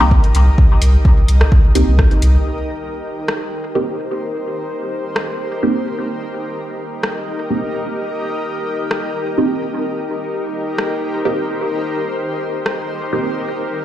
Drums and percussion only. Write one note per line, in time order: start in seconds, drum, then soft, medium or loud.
0.11 kick loud
0.24 closed hi-hat soft
0.35 closed hi-hat medium
0.58 kick loud
0.82 closed hi-hat medium
1.05 kick loud
1.28 closed hi-hat medium
1.41 cross-stick medium
1.52 kick loud
1.75 closed hi-hat medium
1.99 kick loud
1.99 cross-stick medium
2.11 closed hi-hat soft
2.22 closed hi-hat medium
3.28 cross-stick medium
5.16 cross-stick medium
7.03 cross-stick medium
8.91 cross-stick medium
10.78 cross-stick medium
12.66 cross-stick medium